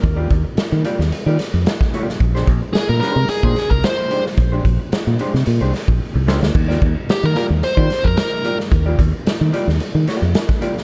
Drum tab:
CC |----------------|----------------|----------------|x---------------|
HH |x-x-x-x-x-x-x-x-|x-x-x-x-x-x-x-x-|x-x-x-x-x-o-----|--x-x-x-x-x-x-x-|
SD |----o--o--o-oo-o|-o--o-o---o-o--o|----o--o--o---oo|-o--o-o---o-o--o|
BD |o-o----------o--|o-o------o-o----|o-o--------o----|o-o------o-o----|

CC |----------------|
HH |x-x-x-x-x-x-x-x-|
SD |----o--o--o-oo-o|
BD |o-o----------o--|